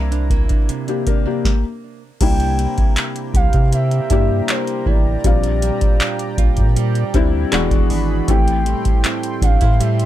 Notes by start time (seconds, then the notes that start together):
Already playing: C2 C3 G3 A#3 D4 E4 C5 E5 A#5
0.12 D4, closed hi-hat
0.30 A#3, kick, closed hi-hat
0.49 D4, kick, closed hi-hat
0.69 C3, closed hi-hat
0.88 A#3 D4 G4, closed hi-hat
1.07 A#3 D4 A#4, kick, closed hi-hat
1.26 A#3 D4 G4
1.45 kick, snare
2.21 C2 C3 G3 A#3 D4 E4 G4 C5 G5 A#5, kick, closed hi-hat, crash
2.40 closed hi-hat
2.58 A#3 G5, closed hi-hat
2.78 C2, kick, closed hi-hat
2.97 clap, closed hi-hat
3.16 closed hi-hat
3.34 C2 G4 F5, kick, closed hi-hat
3.53 C3, kick, closed hi-hat
3.72 A#3 E5, closed hi-hat
3.91 closed hi-hat
4.10 G2 G3 A#3 D4 E4 G4, kick, closed hi-hat
4.48 A#3 C5, clap, closed hi-hat
4.67 closed hi-hat
4.86 A1 E4 D5, kick
5.24 A#1 A#2 G3 C4 D4 F4 G4 D5 G5, kick, closed hi-hat
5.44 closed hi-hat
5.62 G3, closed hi-hat
5.81 A#1, kick, closed hi-hat
6.00 D4, clap, closed hi-hat
6.19 closed hi-hat
6.38 A#1 F4, kick, closed hi-hat
6.57 A#2, kick, closed hi-hat
6.76 G3, closed hi-hat
6.95 closed hi-hat
7.14 D2 G3 C4 D4 E4, kick, closed hi-hat
7.52 E1 E3 G#3 B3 D4 E4 F#4 G#4 D5 B5, clap, closed hi-hat
7.71 kick, closed hi-hat
7.90 G#1 D4, open hi-hat
8.28 A1 A2 A3 C4 E4 G4 A4 G5 C6, kick, closed hi-hat
8.48 closed hi-hat
8.66 G3, closed hi-hat
8.85 A1, kick, closed hi-hat
9.04 C4, clap, closed hi-hat
9.23 closed hi-hat
9.42 A1 D4 F5, kick, closed hi-hat
9.61 A2 E4, kick, closed hi-hat
9.80 G3 E5, closed hi-hat
10.00 closed hi-hat